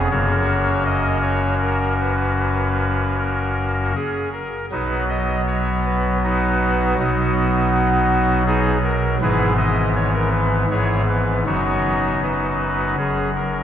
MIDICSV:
0, 0, Header, 1, 2, 480
1, 0, Start_track
1, 0, Key_signature, 5, "major"
1, 0, Tempo, 753769
1, 71, Time_signature, 3, 2, 24, 8
1, 1032, Tempo, 778210
1, 2952, Tempo, 744417
1, 6792, Tempo, 764331
1, 8640, End_track
2, 0, Start_track
2, 0, Title_t, "Pipe organ"
2, 0, Program_c, 0, 19
2, 70, Note_on_c, 0, 58, 50
2, 70, Note_on_c, 0, 61, 55
2, 70, Note_on_c, 0, 73, 102
2, 71, Note_on_c, 0, 66, 53
2, 72, Note_on_c, 0, 30, 66
2, 73, Note_on_c, 0, 42, 67
2, 530, Note_off_c, 0, 73, 0
2, 544, Note_on_c, 0, 75, 98
2, 750, Note_off_c, 0, 75, 0
2, 777, Note_on_c, 0, 73, 99
2, 989, Note_off_c, 0, 73, 0
2, 1024, Note_on_c, 0, 70, 83
2, 1230, Note_off_c, 0, 70, 0
2, 1267, Note_on_c, 0, 71, 80
2, 1472, Note_off_c, 0, 71, 0
2, 1508, Note_on_c, 0, 71, 88
2, 1980, Note_off_c, 0, 71, 0
2, 1998, Note_on_c, 0, 70, 56
2, 2453, Note_off_c, 0, 58, 0
2, 2453, Note_off_c, 0, 61, 0
2, 2453, Note_off_c, 0, 66, 0
2, 2454, Note_off_c, 0, 30, 0
2, 2454, Note_off_c, 0, 42, 0
2, 2464, Note_off_c, 0, 70, 0
2, 2472, Note_on_c, 0, 68, 84
2, 2474, Note_on_c, 0, 61, 64
2, 2677, Note_off_c, 0, 68, 0
2, 2678, Note_off_c, 0, 61, 0
2, 2701, Note_on_c, 0, 70, 62
2, 2907, Note_off_c, 0, 70, 0
2, 2940, Note_on_c, 0, 59, 46
2, 2941, Note_on_c, 0, 71, 83
2, 2942, Note_on_c, 0, 47, 55
2, 2942, Note_on_c, 0, 63, 64
2, 2943, Note_on_c, 0, 54, 43
2, 2944, Note_on_c, 0, 35, 57
2, 2945, Note_on_c, 0, 66, 67
2, 3151, Note_off_c, 0, 71, 0
2, 3152, Note_off_c, 0, 63, 0
2, 3153, Note_off_c, 0, 66, 0
2, 3184, Note_on_c, 0, 75, 89
2, 3394, Note_off_c, 0, 75, 0
2, 3427, Note_on_c, 0, 73, 89
2, 3638, Note_off_c, 0, 73, 0
2, 3670, Note_on_c, 0, 71, 99
2, 3880, Note_off_c, 0, 71, 0
2, 3922, Note_on_c, 0, 66, 77
2, 3922, Note_on_c, 0, 71, 101
2, 3924, Note_on_c, 0, 63, 72
2, 4375, Note_off_c, 0, 59, 0
2, 4376, Note_off_c, 0, 47, 0
2, 4376, Note_off_c, 0, 54, 0
2, 4377, Note_off_c, 0, 35, 0
2, 4392, Note_off_c, 0, 63, 0
2, 4392, Note_off_c, 0, 66, 0
2, 4392, Note_off_c, 0, 71, 0
2, 4404, Note_on_c, 0, 35, 65
2, 4406, Note_on_c, 0, 59, 79
2, 4408, Note_on_c, 0, 47, 62
2, 4408, Note_on_c, 0, 63, 79
2, 4408, Note_on_c, 0, 66, 101
2, 4410, Note_on_c, 0, 54, 54
2, 5335, Note_off_c, 0, 59, 0
2, 5336, Note_off_c, 0, 66, 0
2, 5337, Note_off_c, 0, 63, 0
2, 5357, Note_on_c, 0, 68, 124
2, 5359, Note_on_c, 0, 63, 89
2, 5360, Note_on_c, 0, 59, 88
2, 5561, Note_off_c, 0, 68, 0
2, 5563, Note_off_c, 0, 59, 0
2, 5563, Note_off_c, 0, 63, 0
2, 5597, Note_on_c, 0, 70, 91
2, 5801, Note_off_c, 0, 70, 0
2, 5812, Note_off_c, 0, 35, 0
2, 5814, Note_off_c, 0, 47, 0
2, 5815, Note_off_c, 0, 54, 0
2, 5841, Note_on_c, 0, 52, 56
2, 5842, Note_on_c, 0, 32, 69
2, 5843, Note_on_c, 0, 71, 114
2, 5844, Note_on_c, 0, 44, 68
2, 5844, Note_on_c, 0, 59, 56
2, 5845, Note_on_c, 0, 64, 84
2, 5845, Note_on_c, 0, 68, 76
2, 6044, Note_off_c, 0, 71, 0
2, 6045, Note_off_c, 0, 64, 0
2, 6045, Note_off_c, 0, 68, 0
2, 6074, Note_on_c, 0, 75, 107
2, 6277, Note_off_c, 0, 75, 0
2, 6321, Note_on_c, 0, 73, 94
2, 6419, Note_off_c, 0, 73, 0
2, 6439, Note_on_c, 0, 70, 91
2, 6538, Note_off_c, 0, 70, 0
2, 6556, Note_on_c, 0, 71, 97
2, 6759, Note_off_c, 0, 71, 0
2, 6768, Note_off_c, 0, 52, 0
2, 6769, Note_off_c, 0, 32, 0
2, 6770, Note_off_c, 0, 44, 0
2, 6770, Note_off_c, 0, 59, 0
2, 6801, Note_on_c, 0, 44, 58
2, 6804, Note_on_c, 0, 32, 56
2, 6804, Note_on_c, 0, 52, 47
2, 6804, Note_on_c, 0, 59, 50
2, 6805, Note_on_c, 0, 64, 67
2, 6805, Note_on_c, 0, 68, 67
2, 6805, Note_on_c, 0, 73, 89
2, 7001, Note_off_c, 0, 64, 0
2, 7001, Note_off_c, 0, 68, 0
2, 7001, Note_off_c, 0, 73, 0
2, 7043, Note_on_c, 0, 71, 76
2, 7242, Note_off_c, 0, 71, 0
2, 7260, Note_off_c, 0, 44, 0
2, 7261, Note_off_c, 0, 32, 0
2, 7261, Note_off_c, 0, 52, 0
2, 7262, Note_off_c, 0, 59, 0
2, 7277, Note_on_c, 0, 42, 49
2, 7278, Note_on_c, 0, 54, 43
2, 7278, Note_on_c, 0, 59, 42
2, 7279, Note_on_c, 0, 63, 42
2, 7279, Note_on_c, 0, 66, 63
2, 7279, Note_on_c, 0, 73, 90
2, 7281, Note_on_c, 0, 30, 50
2, 7742, Note_off_c, 0, 66, 0
2, 7742, Note_off_c, 0, 73, 0
2, 7745, Note_off_c, 0, 63, 0
2, 7754, Note_on_c, 0, 71, 63
2, 7757, Note_on_c, 0, 63, 48
2, 7758, Note_on_c, 0, 66, 50
2, 8209, Note_off_c, 0, 42, 0
2, 8209, Note_off_c, 0, 54, 0
2, 8209, Note_off_c, 0, 59, 0
2, 8211, Note_off_c, 0, 30, 0
2, 8217, Note_off_c, 0, 71, 0
2, 8218, Note_off_c, 0, 63, 0
2, 8219, Note_off_c, 0, 66, 0
2, 8225, Note_on_c, 0, 30, 51
2, 8225, Note_on_c, 0, 54, 42
2, 8228, Note_on_c, 0, 42, 49
2, 8228, Note_on_c, 0, 61, 59
2, 8228, Note_on_c, 0, 68, 81
2, 8434, Note_off_c, 0, 61, 0
2, 8434, Note_off_c, 0, 68, 0
2, 8470, Note_on_c, 0, 70, 59
2, 8640, Note_off_c, 0, 30, 0
2, 8640, Note_off_c, 0, 42, 0
2, 8640, Note_off_c, 0, 54, 0
2, 8640, Note_off_c, 0, 70, 0
2, 8640, End_track
0, 0, End_of_file